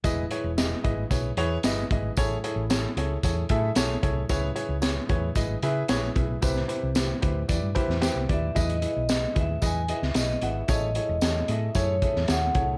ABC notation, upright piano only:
X:1
M:4/4
L:1/8
Q:1/4=113
K:E
V:1 name="Upright piano"
[EGBd] [EGBc] [EGBd] [EGBd] [EGBc] [EGBc] [EGBd] [EGBd] | [EGAc] [EGAc] [EGAc] [EGAc] [EGAc] [EGAe] [EGAc] [EGAc] | [EGBc] [EGBc] [EGBc] [EGBc] [EGBd] [EGBe] [EGBc] [EGBe] | [E=GB=c] [EGBc] [EGBc] [EGBc] [EGB=d] [EGBcb] [EGBc=g] [EGBd] |
[EGBd] [EGBe] [EGBd] [EGBe] [EGBd] [EGBd] [EGBd] [EGBf] | [EGAc] [EGAc] [EGAc] [EGAd] [EGAc] [EGAe] [EGAc] [EGAc] |]
V:2 name="Upright piano" clef=bass
E,3 z4 z | A,,3 z4 z | C,3 z4 z | =C,3 z4 z |
E,3 z4 z | A,,3 z4 z |]